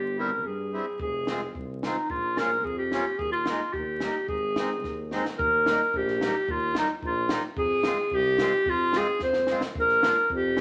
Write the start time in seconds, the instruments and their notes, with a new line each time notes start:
Already playing: tuba G1, clarinet G4
0.17 accordion G3 C4 E4, clarinet A#4
0.44 tuba G2, clarinet G#4
0.73 accordion G3 C4 E4
1.00 tuba F1, clarinet G#4, kick
1.27 accordion G#3 C4 F4, snare
1.55 tuba C2, kick
1.83 accordion G#3 C4 F4, clarinet D#4, snare
2.10 tuba A#1, clarinet F4, kick
2.37 accordion A#3 C#4 F4, clarinet A#4, snare
2.64 tuba F2, clarinet G#4, kick
2.78 clarinet G4
2.92 accordion A#3 C#4 F4, snare
3.18 tuba D#2, clarinet G#4, kick
3.32 clarinet F4
3.46 accordion G#3 A#3 D#4, snare
3.73 tuba D#2, clarinet G4, kick
4.00 accordion G3 A#3 D#4, snare
4.28 tuba G#1, clarinet G#4, kick
4.56 accordion G#3 C4 D#4, snare
4.84 tuba D#2, kick, snare
5.11 accordion G#3 C4 D#4, snare
5.25 snare
5.38 tuba D#2, clarinet A#4, kick
5.66 accordion G3 A#3 D#4, snare
5.94 tuba A#1, clarinet G4, kick
6.08 snare
6.21 accordion G3 A#3 D#4, snare
6.48 tuba D#2, clarinet F4, kick
6.75 accordion G3 A#3 D#4, clarinet D#4, snare
7.02 tuba A#1, clarinet F4, kick
7.29 accordion G3 A#3 D#4, snare
7.57 tuba F2, clarinet G#4, kick
7.83 accordion G#3 C4 F4, snare
8.11 tuba C2, clarinet G4, kick
8.38 accordion G#3 C4 F4, snare
8.66 tuba F2, clarinet F4, kick
8.93 accordion G#3 C4 F4, snare
8.97 clarinet G#4
9.19 tuba F2, kick, snare
9.23 clarinet C5
9.33 snare
9.47 accordion G#3 C4 F4, snare
9.61 snare
9.75 tuba A#1, kick
9.80 clarinet A#4
9.89 snare
10.03 accordion A#3 D4 F4, snare
10.30 tuba F2, kick
10.35 clarinet G4
10.57 accordion A#3 D4, snare